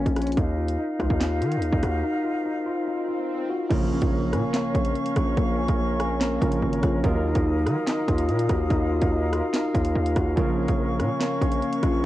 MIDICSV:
0, 0, Header, 1, 8, 480
1, 0, Start_track
1, 0, Key_signature, -5, "minor"
1, 0, Tempo, 416667
1, 427, Time_signature, 4, 2, 24, 8
1, 13887, End_track
2, 0, Start_track
2, 0, Title_t, "Flute section"
2, 0, Program_c, 0, 73
2, 0, Note_on_c, 0, 61, 84
2, 0, Note_on_c, 0, 65, 76
2, 0, Note_on_c, 0, 70, 77
2, 149, Note_off_c, 0, 70, 0
2, 389, Note_off_c, 0, 61, 0
2, 389, Note_off_c, 0, 65, 0
2, 428, Note_on_c, 0, 63, 82
2, 428, Note_on_c, 0, 70, 76
2, 428, Note_on_c, 0, 77, 91
2, 3937, Note_off_c, 0, 63, 0
2, 4229, Note_off_c, 0, 77, 0
2, 4230, Note_off_c, 0, 70, 0
2, 4268, Note_on_c, 0, 70, 84
2, 4268, Note_on_c, 0, 73, 76
2, 4268, Note_on_c, 0, 77, 79
2, 4268, Note_on_c, 0, 85, 93
2, 8070, Note_off_c, 0, 73, 0
2, 8070, Note_off_c, 0, 77, 0
2, 8070, Note_off_c, 0, 85, 0
2, 8107, Note_on_c, 0, 75, 76
2, 8107, Note_on_c, 0, 77, 79
2, 8107, Note_on_c, 0, 87, 96
2, 11626, Note_off_c, 0, 87, 0
2, 11653, Note_off_c, 0, 75, 0
2, 11948, Note_on_c, 0, 73, 76
2, 11948, Note_on_c, 0, 85, 91
2, 13887, Note_off_c, 0, 70, 0
2, 13887, Note_off_c, 0, 73, 0
2, 13887, Note_off_c, 0, 77, 0
2, 13887, Note_off_c, 0, 85, 0
2, 13887, End_track
3, 0, Start_track
3, 0, Title_t, "Tine electric piano"
3, 0, Program_c, 1, 4
3, 0, Note_on_c, 1, 58, 81
3, 0, Note_on_c, 1, 61, 71
3, 188, Note_on_c, 1, 65, 86
3, 428, Note_off_c, 1, 65, 0
3, 429, Note_off_c, 1, 58, 0
3, 429, Note_off_c, 1, 61, 0
3, 429, Note_on_c, 1, 63, 92
3, 665, Note_on_c, 1, 65, 70
3, 894, Note_off_c, 1, 63, 0
3, 908, Note_on_c, 1, 63, 68
3, 1128, Note_off_c, 1, 65, 0
3, 1142, Note_on_c, 1, 65, 84
3, 1372, Note_off_c, 1, 63, 0
3, 1386, Note_on_c, 1, 63, 73
3, 1615, Note_off_c, 1, 65, 0
3, 1629, Note_on_c, 1, 65, 77
3, 2105, Note_on_c, 1, 66, 82
3, 2336, Note_off_c, 1, 63, 0
3, 2349, Note_on_c, 1, 63, 93
3, 2577, Note_off_c, 1, 65, 0
3, 2591, Note_on_c, 1, 65, 76
3, 2815, Note_off_c, 1, 63, 0
3, 2828, Note_on_c, 1, 63, 76
3, 3053, Note_off_c, 1, 65, 0
3, 3067, Note_on_c, 1, 65, 91
3, 3298, Note_off_c, 1, 63, 0
3, 3312, Note_on_c, 1, 63, 82
3, 3534, Note_off_c, 1, 65, 0
3, 3546, Note_off_c, 1, 66, 0
3, 3547, Note_on_c, 1, 65, 75
3, 4027, Note_on_c, 1, 66, 83
3, 4265, Note_on_c, 1, 58, 83
3, 4268, Note_off_c, 1, 65, 0
3, 4268, Note_off_c, 1, 66, 0
3, 4270, Note_off_c, 1, 63, 0
3, 4509, Note_on_c, 1, 61, 80
3, 4733, Note_off_c, 1, 58, 0
3, 4747, Note_on_c, 1, 58, 77
3, 4976, Note_off_c, 1, 61, 0
3, 4990, Note_on_c, 1, 61, 91
3, 5213, Note_off_c, 1, 58, 0
3, 5227, Note_on_c, 1, 58, 77
3, 5455, Note_off_c, 1, 61, 0
3, 5469, Note_on_c, 1, 61, 81
3, 5945, Note_on_c, 1, 65, 81
3, 6173, Note_off_c, 1, 58, 0
3, 6187, Note_on_c, 1, 58, 91
3, 6414, Note_off_c, 1, 61, 0
3, 6428, Note_on_c, 1, 61, 79
3, 6657, Note_off_c, 1, 58, 0
3, 6671, Note_on_c, 1, 58, 81
3, 6892, Note_off_c, 1, 61, 0
3, 6906, Note_on_c, 1, 61, 96
3, 7135, Note_off_c, 1, 58, 0
3, 7149, Note_on_c, 1, 58, 81
3, 7375, Note_off_c, 1, 61, 0
3, 7386, Note_off_c, 1, 65, 0
3, 7389, Note_on_c, 1, 61, 72
3, 7868, Note_on_c, 1, 65, 84
3, 8108, Note_off_c, 1, 58, 0
3, 8108, Note_off_c, 1, 61, 0
3, 8108, Note_off_c, 1, 65, 0
3, 8108, Note_on_c, 1, 63, 93
3, 8343, Note_on_c, 1, 65, 77
3, 8573, Note_off_c, 1, 63, 0
3, 8587, Note_on_c, 1, 63, 68
3, 8808, Note_off_c, 1, 65, 0
3, 8822, Note_on_c, 1, 65, 87
3, 9051, Note_off_c, 1, 63, 0
3, 9065, Note_on_c, 1, 63, 73
3, 9294, Note_off_c, 1, 65, 0
3, 9308, Note_on_c, 1, 65, 83
3, 9785, Note_on_c, 1, 66, 82
3, 10016, Note_off_c, 1, 63, 0
3, 10030, Note_on_c, 1, 63, 95
3, 10257, Note_off_c, 1, 65, 0
3, 10271, Note_on_c, 1, 65, 78
3, 10495, Note_off_c, 1, 63, 0
3, 10509, Note_on_c, 1, 63, 78
3, 10734, Note_off_c, 1, 65, 0
3, 10747, Note_on_c, 1, 65, 95
3, 10978, Note_off_c, 1, 63, 0
3, 10992, Note_on_c, 1, 63, 80
3, 11213, Note_off_c, 1, 65, 0
3, 11226, Note_off_c, 1, 66, 0
3, 11227, Note_on_c, 1, 65, 78
3, 11707, Note_on_c, 1, 66, 85
3, 11946, Note_on_c, 1, 58, 85
3, 11947, Note_off_c, 1, 66, 0
3, 11948, Note_off_c, 1, 65, 0
3, 11950, Note_off_c, 1, 63, 0
3, 12189, Note_on_c, 1, 61, 82
3, 12413, Note_off_c, 1, 58, 0
3, 12426, Note_on_c, 1, 58, 79
3, 12657, Note_off_c, 1, 61, 0
3, 12671, Note_on_c, 1, 61, 94
3, 12894, Note_off_c, 1, 58, 0
3, 12908, Note_on_c, 1, 58, 79
3, 13136, Note_off_c, 1, 61, 0
3, 13150, Note_on_c, 1, 61, 84
3, 13626, Note_on_c, 1, 65, 84
3, 13853, Note_off_c, 1, 58, 0
3, 13887, Note_off_c, 1, 61, 0
3, 13887, Note_off_c, 1, 65, 0
3, 13887, End_track
4, 0, Start_track
4, 0, Title_t, "Felt piano"
4, 0, Program_c, 2, 0
4, 4255, Note_on_c, 2, 49, 85
4, 4261, Note_on_c, 2, 53, 73
4, 4267, Note_on_c, 2, 58, 69
4, 4274, Note_on_c, 2, 65, 70
4, 4280, Note_on_c, 2, 70, 84
4, 4453, Control_c, 2, 64, 127
4, 7335, Note_off_c, 2, 49, 0
4, 7338, Note_off_c, 2, 53, 0
4, 7342, Note_off_c, 2, 58, 0
4, 7345, Note_off_c, 2, 65, 0
4, 7348, Note_off_c, 2, 70, 0
4, 7380, Note_on_c, 2, 49, 61
4, 7384, Note_on_c, 2, 53, 53
4, 7387, Note_on_c, 2, 58, 53
4, 7390, Note_on_c, 2, 65, 53
4, 7393, Note_on_c, 2, 70, 65
4, 8091, Note_off_c, 2, 58, 0
4, 8096, Note_on_c, 2, 51, 81
4, 8097, Note_off_c, 2, 65, 0
4, 8102, Note_on_c, 2, 54, 72
4, 8104, Note_off_c, 2, 49, 0
4, 8104, Note_off_c, 2, 70, 0
4, 8106, Note_off_c, 2, 53, 0
4, 8108, Note_on_c, 2, 58, 69
4, 8114, Note_on_c, 2, 65, 71
4, 8121, Note_on_c, 2, 70, 90
4, 8123, Control_c, 2, 64, 0
4, 8330, Control_c, 2, 64, 127
4, 11896, Note_off_c, 2, 51, 0
4, 11899, Note_off_c, 2, 54, 0
4, 11902, Note_off_c, 2, 58, 0
4, 11905, Note_off_c, 2, 65, 0
4, 11909, Note_off_c, 2, 70, 0
4, 11936, Note_on_c, 2, 49, 84
4, 11942, Note_on_c, 2, 53, 74
4, 11948, Note_on_c, 2, 58, 70
4, 11955, Note_on_c, 2, 65, 72
4, 11961, Note_on_c, 2, 70, 88
4, 11962, Control_c, 2, 64, 0
4, 12180, Control_c, 2, 64, 127
4, 13887, Note_off_c, 2, 49, 0
4, 13887, Note_off_c, 2, 53, 0
4, 13887, Note_off_c, 2, 58, 0
4, 13887, Note_off_c, 2, 65, 0
4, 13887, Note_off_c, 2, 70, 0
4, 13887, End_track
5, 0, Start_track
5, 0, Title_t, "808-style bass"
5, 0, Program_c, 3, 38
5, 68, Note_on_c, 3, 34, 101
5, 413, Note_off_c, 3, 34, 0
5, 428, Note_on_c, 3, 39, 110
5, 889, Note_off_c, 3, 39, 0
5, 1148, Note_on_c, 3, 37, 104
5, 1261, Note_off_c, 3, 37, 0
5, 1268, Note_on_c, 3, 39, 107
5, 1626, Note_on_c, 3, 51, 98
5, 1644, Note_off_c, 3, 39, 0
5, 1806, Note_on_c, 3, 39, 97
5, 1823, Note_off_c, 3, 51, 0
5, 1978, Note_off_c, 3, 39, 0
5, 1987, Note_on_c, 3, 39, 103
5, 2100, Note_off_c, 3, 39, 0
5, 2107, Note_on_c, 3, 39, 106
5, 2338, Note_off_c, 3, 39, 0
5, 4267, Note_on_c, 3, 34, 116
5, 4613, Note_off_c, 3, 34, 0
5, 4628, Note_on_c, 3, 34, 108
5, 4988, Note_on_c, 3, 46, 104
5, 5006, Note_off_c, 3, 34, 0
5, 5102, Note_off_c, 3, 46, 0
5, 5468, Note_on_c, 3, 34, 106
5, 5699, Note_off_c, 3, 34, 0
5, 5947, Note_on_c, 3, 34, 107
5, 6178, Note_off_c, 3, 34, 0
5, 6188, Note_on_c, 3, 34, 116
5, 6534, Note_off_c, 3, 34, 0
5, 6549, Note_on_c, 3, 34, 105
5, 7355, Note_off_c, 3, 34, 0
5, 7390, Note_on_c, 3, 34, 108
5, 7619, Note_off_c, 3, 34, 0
5, 7628, Note_on_c, 3, 32, 107
5, 7858, Note_off_c, 3, 32, 0
5, 7868, Note_on_c, 3, 34, 107
5, 8098, Note_off_c, 3, 34, 0
5, 8108, Note_on_c, 3, 39, 117
5, 8453, Note_off_c, 3, 39, 0
5, 8469, Note_on_c, 3, 39, 107
5, 8828, Note_on_c, 3, 51, 100
5, 8846, Note_off_c, 3, 39, 0
5, 8942, Note_off_c, 3, 51, 0
5, 9309, Note_on_c, 3, 39, 112
5, 9549, Note_on_c, 3, 46, 99
5, 9566, Note_off_c, 3, 39, 0
5, 9776, Note_off_c, 3, 46, 0
5, 9787, Note_on_c, 3, 39, 106
5, 10018, Note_off_c, 3, 39, 0
5, 10027, Note_on_c, 3, 39, 109
5, 10373, Note_off_c, 3, 39, 0
5, 10389, Note_on_c, 3, 39, 100
5, 10849, Note_off_c, 3, 39, 0
5, 11229, Note_on_c, 3, 39, 103
5, 11459, Note_off_c, 3, 39, 0
5, 11468, Note_on_c, 3, 39, 105
5, 11699, Note_off_c, 3, 39, 0
5, 11707, Note_on_c, 3, 39, 107
5, 11938, Note_off_c, 3, 39, 0
5, 11948, Note_on_c, 3, 34, 114
5, 12293, Note_off_c, 3, 34, 0
5, 12309, Note_on_c, 3, 34, 108
5, 12669, Note_on_c, 3, 46, 104
5, 12686, Note_off_c, 3, 34, 0
5, 12782, Note_off_c, 3, 46, 0
5, 13149, Note_on_c, 3, 34, 107
5, 13379, Note_off_c, 3, 34, 0
5, 13627, Note_on_c, 3, 34, 107
5, 13858, Note_off_c, 3, 34, 0
5, 13887, End_track
6, 0, Start_track
6, 0, Title_t, "Impact"
6, 0, Program_c, 4, 103
6, 4267, Note_on_c, 4, 60, 87
6, 6188, Note_off_c, 4, 60, 0
6, 13887, End_track
7, 0, Start_track
7, 0, Title_t, "Swell"
7, 0, Program_c, 5, 103
7, 2348, Note_on_c, 5, 60, 83
7, 4268, Note_off_c, 5, 60, 0
7, 13887, End_track
8, 0, Start_track
8, 0, Title_t, "Drums"
8, 68, Note_on_c, 9, 36, 88
8, 71, Note_on_c, 9, 42, 68
8, 183, Note_off_c, 9, 36, 0
8, 186, Note_off_c, 9, 42, 0
8, 188, Note_on_c, 9, 37, 98
8, 188, Note_on_c, 9, 42, 84
8, 249, Note_off_c, 9, 42, 0
8, 249, Note_on_c, 9, 42, 75
8, 304, Note_off_c, 9, 37, 0
8, 308, Note_off_c, 9, 42, 0
8, 308, Note_on_c, 9, 42, 62
8, 368, Note_off_c, 9, 42, 0
8, 368, Note_on_c, 9, 42, 49
8, 428, Note_off_c, 9, 42, 0
8, 428, Note_on_c, 9, 36, 117
8, 428, Note_on_c, 9, 42, 67
8, 543, Note_off_c, 9, 36, 0
8, 543, Note_off_c, 9, 42, 0
8, 787, Note_on_c, 9, 42, 75
8, 903, Note_off_c, 9, 42, 0
8, 1148, Note_on_c, 9, 36, 97
8, 1148, Note_on_c, 9, 37, 94
8, 1150, Note_on_c, 9, 42, 78
8, 1263, Note_off_c, 9, 36, 0
8, 1263, Note_off_c, 9, 37, 0
8, 1265, Note_off_c, 9, 42, 0
8, 1268, Note_on_c, 9, 36, 94
8, 1383, Note_off_c, 9, 36, 0
8, 1388, Note_on_c, 9, 38, 111
8, 1396, Note_on_c, 9, 39, 87
8, 1504, Note_off_c, 9, 38, 0
8, 1511, Note_off_c, 9, 39, 0
8, 1633, Note_on_c, 9, 42, 83
8, 1747, Note_off_c, 9, 42, 0
8, 1747, Note_on_c, 9, 42, 79
8, 1862, Note_off_c, 9, 42, 0
8, 1866, Note_on_c, 9, 42, 75
8, 1981, Note_off_c, 9, 42, 0
8, 1987, Note_on_c, 9, 36, 87
8, 2103, Note_off_c, 9, 36, 0
8, 2106, Note_on_c, 9, 42, 93
8, 2108, Note_on_c, 9, 37, 98
8, 2221, Note_off_c, 9, 42, 0
8, 2223, Note_off_c, 9, 37, 0
8, 4267, Note_on_c, 9, 36, 116
8, 4267, Note_on_c, 9, 49, 104
8, 4268, Note_on_c, 9, 42, 70
8, 4383, Note_off_c, 9, 36, 0
8, 4383, Note_off_c, 9, 42, 0
8, 4383, Note_off_c, 9, 49, 0
8, 4627, Note_on_c, 9, 42, 83
8, 4628, Note_on_c, 9, 36, 101
8, 4742, Note_off_c, 9, 42, 0
8, 4744, Note_off_c, 9, 36, 0
8, 4987, Note_on_c, 9, 37, 95
8, 4989, Note_on_c, 9, 42, 80
8, 5103, Note_off_c, 9, 37, 0
8, 5104, Note_off_c, 9, 42, 0
8, 5228, Note_on_c, 9, 38, 113
8, 5235, Note_on_c, 9, 39, 87
8, 5343, Note_off_c, 9, 38, 0
8, 5350, Note_off_c, 9, 39, 0
8, 5468, Note_on_c, 9, 36, 93
8, 5471, Note_on_c, 9, 42, 85
8, 5584, Note_off_c, 9, 36, 0
8, 5585, Note_off_c, 9, 42, 0
8, 5585, Note_on_c, 9, 42, 78
8, 5700, Note_off_c, 9, 42, 0
8, 5707, Note_on_c, 9, 42, 46
8, 5822, Note_off_c, 9, 42, 0
8, 5827, Note_on_c, 9, 42, 77
8, 5942, Note_off_c, 9, 42, 0
8, 5944, Note_on_c, 9, 42, 95
8, 5947, Note_on_c, 9, 36, 99
8, 5947, Note_on_c, 9, 37, 101
8, 6060, Note_off_c, 9, 42, 0
8, 6062, Note_off_c, 9, 36, 0
8, 6062, Note_off_c, 9, 37, 0
8, 6188, Note_on_c, 9, 36, 117
8, 6188, Note_on_c, 9, 42, 71
8, 6303, Note_off_c, 9, 36, 0
8, 6303, Note_off_c, 9, 42, 0
8, 6547, Note_on_c, 9, 42, 77
8, 6549, Note_on_c, 9, 36, 99
8, 6662, Note_off_c, 9, 42, 0
8, 6664, Note_off_c, 9, 36, 0
8, 6908, Note_on_c, 9, 37, 100
8, 6910, Note_on_c, 9, 42, 79
8, 7023, Note_off_c, 9, 37, 0
8, 7025, Note_off_c, 9, 42, 0
8, 7149, Note_on_c, 9, 38, 114
8, 7157, Note_on_c, 9, 39, 90
8, 7264, Note_off_c, 9, 38, 0
8, 7272, Note_off_c, 9, 39, 0
8, 7389, Note_on_c, 9, 36, 91
8, 7393, Note_on_c, 9, 42, 81
8, 7504, Note_off_c, 9, 36, 0
8, 7507, Note_off_c, 9, 42, 0
8, 7507, Note_on_c, 9, 42, 81
8, 7622, Note_off_c, 9, 42, 0
8, 7751, Note_on_c, 9, 42, 72
8, 7866, Note_off_c, 9, 42, 0
8, 7866, Note_on_c, 9, 42, 91
8, 7867, Note_on_c, 9, 36, 99
8, 7868, Note_on_c, 9, 37, 104
8, 7981, Note_off_c, 9, 42, 0
8, 7983, Note_off_c, 9, 36, 0
8, 7984, Note_off_c, 9, 37, 0
8, 8108, Note_on_c, 9, 36, 121
8, 8109, Note_on_c, 9, 42, 68
8, 8223, Note_off_c, 9, 36, 0
8, 8224, Note_off_c, 9, 42, 0
8, 8468, Note_on_c, 9, 42, 79
8, 8469, Note_on_c, 9, 36, 95
8, 8583, Note_off_c, 9, 42, 0
8, 8584, Note_off_c, 9, 36, 0
8, 8829, Note_on_c, 9, 37, 97
8, 8830, Note_on_c, 9, 42, 78
8, 8944, Note_off_c, 9, 37, 0
8, 8945, Note_off_c, 9, 42, 0
8, 9068, Note_on_c, 9, 38, 116
8, 9076, Note_on_c, 9, 39, 91
8, 9184, Note_off_c, 9, 38, 0
8, 9191, Note_off_c, 9, 39, 0
8, 9309, Note_on_c, 9, 36, 89
8, 9313, Note_on_c, 9, 42, 82
8, 9425, Note_off_c, 9, 36, 0
8, 9426, Note_off_c, 9, 42, 0
8, 9426, Note_on_c, 9, 42, 84
8, 9542, Note_off_c, 9, 42, 0
8, 9548, Note_on_c, 9, 42, 49
8, 9663, Note_off_c, 9, 42, 0
8, 9668, Note_on_c, 9, 42, 79
8, 9783, Note_off_c, 9, 42, 0
8, 9785, Note_on_c, 9, 42, 92
8, 9787, Note_on_c, 9, 36, 102
8, 9788, Note_on_c, 9, 37, 102
8, 9901, Note_off_c, 9, 42, 0
8, 9902, Note_off_c, 9, 36, 0
8, 9903, Note_off_c, 9, 37, 0
8, 10028, Note_on_c, 9, 36, 118
8, 10028, Note_on_c, 9, 42, 71
8, 10143, Note_off_c, 9, 36, 0
8, 10143, Note_off_c, 9, 42, 0
8, 10387, Note_on_c, 9, 42, 80
8, 10389, Note_on_c, 9, 36, 99
8, 10502, Note_off_c, 9, 42, 0
8, 10504, Note_off_c, 9, 36, 0
8, 10748, Note_on_c, 9, 37, 101
8, 10749, Note_on_c, 9, 42, 81
8, 10863, Note_off_c, 9, 37, 0
8, 10865, Note_off_c, 9, 42, 0
8, 10988, Note_on_c, 9, 38, 113
8, 10995, Note_on_c, 9, 39, 90
8, 11103, Note_off_c, 9, 38, 0
8, 11111, Note_off_c, 9, 39, 0
8, 11229, Note_on_c, 9, 36, 89
8, 11232, Note_on_c, 9, 42, 82
8, 11344, Note_off_c, 9, 36, 0
8, 11346, Note_off_c, 9, 42, 0
8, 11346, Note_on_c, 9, 42, 81
8, 11461, Note_off_c, 9, 42, 0
8, 11590, Note_on_c, 9, 42, 69
8, 11705, Note_off_c, 9, 42, 0
8, 11705, Note_on_c, 9, 42, 85
8, 11707, Note_on_c, 9, 36, 98
8, 11708, Note_on_c, 9, 37, 99
8, 11820, Note_off_c, 9, 42, 0
8, 11822, Note_off_c, 9, 36, 0
8, 11823, Note_off_c, 9, 37, 0
8, 11948, Note_on_c, 9, 36, 122
8, 11948, Note_on_c, 9, 42, 68
8, 12063, Note_off_c, 9, 36, 0
8, 12063, Note_off_c, 9, 42, 0
8, 12307, Note_on_c, 9, 42, 80
8, 12309, Note_on_c, 9, 36, 101
8, 12422, Note_off_c, 9, 42, 0
8, 12424, Note_off_c, 9, 36, 0
8, 12668, Note_on_c, 9, 37, 93
8, 12669, Note_on_c, 9, 42, 80
8, 12783, Note_off_c, 9, 37, 0
8, 12785, Note_off_c, 9, 42, 0
8, 12908, Note_on_c, 9, 38, 113
8, 12916, Note_on_c, 9, 39, 91
8, 13024, Note_off_c, 9, 38, 0
8, 13031, Note_off_c, 9, 39, 0
8, 13149, Note_on_c, 9, 36, 91
8, 13153, Note_on_c, 9, 42, 85
8, 13264, Note_off_c, 9, 36, 0
8, 13267, Note_off_c, 9, 42, 0
8, 13267, Note_on_c, 9, 42, 77
8, 13382, Note_off_c, 9, 42, 0
8, 13389, Note_on_c, 9, 42, 46
8, 13504, Note_off_c, 9, 42, 0
8, 13508, Note_on_c, 9, 42, 78
8, 13623, Note_off_c, 9, 42, 0
8, 13626, Note_on_c, 9, 42, 97
8, 13627, Note_on_c, 9, 36, 96
8, 13628, Note_on_c, 9, 37, 98
8, 13741, Note_off_c, 9, 42, 0
8, 13742, Note_off_c, 9, 36, 0
8, 13743, Note_off_c, 9, 37, 0
8, 13887, End_track
0, 0, End_of_file